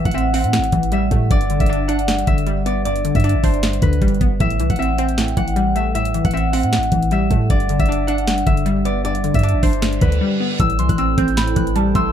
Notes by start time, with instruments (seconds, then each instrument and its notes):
Already playing: synth pluck A2 E3 G3 A3, harp E5
0.05 808-style bass A1, harp F#5, kick, closed hi-hat
0.11 synth pluck C4, harp E5, closed hi-hat
0.18 closed hi-hat
0.34 synth pluck C4, harp F#5, open hi-hat
0.44 808-style bass A2, closed hi-hat
0.53 synth pluck A2, snare, closed hi-hat
0.58 808-style bass A1
0.64 closed hi-hat
0.72 808-style bass A1, synth pluck E3, kick, closed hi-hat
0.83 closed hi-hat
0.92 synth pluck G3, harp E5, closed hi-hat
1.11 808-style bass A2, synth pluck A3, kick, closed hi-hat
1.31 808-style bass G1, synth pluck G2, harp D5, kick, closed hi-hat
1.41 closed hi-hat
1.50 synth pluck D3, closed hi-hat
1.60 808-style bass G1, harp E5, kick, closed hi-hat
1.66 synth pluck D4, harp D5, closed hi-hat
1.73 closed hi-hat
1.88 synth pluck D4, harp F#5, closed hi-hat
1.99 closed hi-hat
2.08 synth pluck G2, snare, closed hi-hat
2.18 closed hi-hat
2.27 808-style bass G1, synth pluck D3, harp E5, kick, closed hi-hat
2.38 closed hi-hat
2.46 synth pluck G3, closed hi-hat
2.66 synth pluck B3, harp D5, closed hi-hat
2.85 synth pluck G2, harp D5, closed hi-hat
2.96 closed hi-hat
3.05 synth pluck D3, closed hi-hat
3.15 808-style bass G2, harp E5, kick, closed hi-hat
3.20 closed hi-hat
3.24 synth pluck D4, harp D5, closed hi-hat
3.29 closed hi-hat
3.34 808-style bass A1
3.44 808-style bass G1, synth pluck D4, harp C5, kick, open hi-hat
3.54 closed hi-hat
3.63 synth pluck G2, snare, closed hi-hat
3.73 closed hi-hat
3.82 808-style bass D2, synth pluck D3, harp B4, kick, closed hi-hat
3.93 closed hi-hat
4.02 808-style bass G1, synth pluck G3, kick, closed hi-hat
4.08 closed hi-hat
4.15 closed hi-hat
4.21 808-style bass G1, synth pluck B3, kick, closed hi-hat
4.40 808-style bass A1, synth pluck A2, harp E5, kick, closed hi-hat
4.50 closed hi-hat
4.60 808-style bass C2, synth pluck E3, closed hi-hat
4.70 808-style bass A1, harp F#5, kick, closed hi-hat
4.76 synth pluck C4, harp E5, closed hi-hat
4.82 closed hi-hat
4.98 synth pluck C4, harp G5, closed hi-hat
5.09 closed hi-hat
5.18 synth pluck A2, snare, closed hi-hat
5.28 closed hi-hat
5.37 808-style bass A1, synth pluck E3, harp F#5, kick, closed hi-hat
5.48 closed hi-hat
5.56 synth pluck G3, closed hi-hat
5.76 synth pluck A3, harp E5, closed hi-hat
5.95 synth pluck A2, harp E5, closed hi-hat
6.05 closed hi-hat
6.14 synth pluck E3, closed hi-hat
6.25 808-style bass A1, harp F#5, kick, closed hi-hat
6.31 synth pluck C4, harp E5, closed hi-hat
6.37 closed hi-hat
6.53 synth pluck C4, harp F#5, open hi-hat
6.63 808-style bass A2, closed hi-hat
6.73 synth pluck A2, snare, closed hi-hat
6.78 808-style bass A1
6.83 closed hi-hat
6.92 808-style bass A1, synth pluck E3, kick, closed hi-hat
7.03 closed hi-hat
7.11 synth pluck G3, harp E5, closed hi-hat
7.31 808-style bass A2, synth pluck A3, kick, closed hi-hat
7.50 808-style bass G1, synth pluck G2, harp D5, kick, closed hi-hat
7.60 closed hi-hat
7.69 synth pluck D3, closed hi-hat
7.79 808-style bass G1, harp E5, kick, closed hi-hat
7.86 synth pluck D4, harp D5, closed hi-hat
7.92 closed hi-hat
8.07 synth pluck D4, harp F#5, closed hi-hat
8.18 closed hi-hat
8.28 synth pluck G2, snare, closed hi-hat
8.38 closed hi-hat
8.46 808-style bass G1, synth pluck D3, harp E5, kick, closed hi-hat
8.57 closed hi-hat
8.66 synth pluck G3, closed hi-hat
8.85 synth pluck B3, harp D5, closed hi-hat
9.05 synth pluck G2, harp D5, closed hi-hat
9.15 closed hi-hat
9.24 synth pluck D3, closed hi-hat
9.34 808-style bass G2, harp E5, kick, closed hi-hat
9.39 closed hi-hat
9.43 synth pluck D4, harp D5, closed hi-hat
9.49 closed hi-hat
9.54 808-style bass A1
9.63 808-style bass G1, synth pluck D4, harp C5, kick, open hi-hat
9.73 closed hi-hat
9.82 synth pluck G2, snare, closed hi-hat, reverse cymbal
9.93 closed hi-hat
10.01 808-style bass D2, synth pluck D3, harp B4, kick, closed hi-hat
10.12 closed hi-hat
10.21 synth pluck G3
10.40 synth pluck B3
10.60 808-style bass A1, synth pluck A2, analog synth pad E4 A4 C5 G5, harp E6, kick, closed hi-hat
10.70 closed hi-hat
10.79 808-style bass C2, synth pluck E3, synth bell C6, closed hi-hat
10.89 808-style bass A1, harp F#6, kick, closed hi-hat
10.98 synth pluck C4, harp E6, closed hi-hat
11.18 808-style bass A1, synth pluck C4, harp G6, kick, closed hi-hat
11.28 closed hi-hat
11.37 synth pluck A2, synth bell B5, snare, closed hi-hat
11.48 closed hi-hat
11.56 808-style bass A1, synth pluck E3, harp F#6, kick, closed hi-hat
11.67 closed hi-hat
11.75 synth pluck G3, synth bell A5, closed hi-hat
11.95 808-style bass A1, synth pluck A3, synth bell C6, harp E6, kick, closed hi-hat